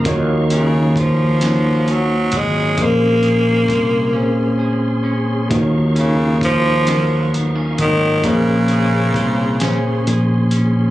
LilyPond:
<<
  \new Staff \with { instrumentName = "Tonewheel organ" } { \time 6/8 \key ees \minor \tempo 4. = 44 <ees' f'' des'''>2. | <des' aes' c'''>2. | <ees' f'' des'''>2. | <des' aes' c'''>2. | }
  \new Staff \with { instrumentName = "Clean electric guitar" } { \time 6/8 \key ees \minor ees8 des'8 f'8 ges8 des'8 ges8 | bes8 aes'8 c''8 des'8 aes'8 des'8 | ees8 des'8 f'8 ges8 ces'16 des'16 ges8 | bes8 aes'8 c''8 des'8 aes'8 des'8 | }
  \new Staff \with { instrumentName = "Tine electric piano" } { \time 6/8 \key ees \minor <ees bes f' ges' des''>4 r8 <ees bes ees' f' des''>4 r8 | <bes, bes c' des' aes' c''>4 r8 <bes, bes c' des' aes' c''>4 r8 | <ees bes f' ges' c'' des''>4 r8 <ees bes ees' f' bes'>4 r8 | <bes, bes des' aes' c''>4 r8 <bes, bes des' aes' c''>4 r8 | }
  \new Staff \with { instrumentName = "Tenor saxophone" } { \clef bass \time 6/8 \key ees \minor r8 des8 f4 ges8 aes8 | bes2 r4 | r8 des8 f4 r8 ees8 | des2 r4 | }
  \new Staff \with { instrumentName = "Fretless electric bass" } { \clef bass \time 6/8 \key ees \minor ees,2~ ees,8 aes,,8 | bes,,4 c,8 r4. | ees,2~ ees,8 aes,,8 | bes,,4 c,8 r8 bes,,4 | }
  \new DrumStaff \with { instrumentName = "Drums" } \drummode { \time 6/8 <hh bd>8 hh8 <hh bd>8 <hh sn>8 hh8 <hh bd>8 | <hh bd>8 hh8 <hh bd>8 r4. | <hh bd>8 hh8 <hh bd>8 <hh sn>8 hh8 <hh bd>8 | <hh bd>8 hh8 <hh bd>8 <hh sn>8 hh8 hh8 | }
>>